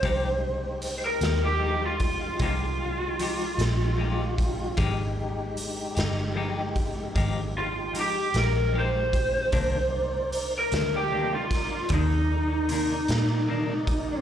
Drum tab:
HH |x-xx-xx-xx-x|x-xx-xx-xx-x|x-xx-xx-xx-x|
SD |---o-----o--|---o-----o--|---o-o---o--|
BD |o----oo----o|o----oo----o|o----oo----o|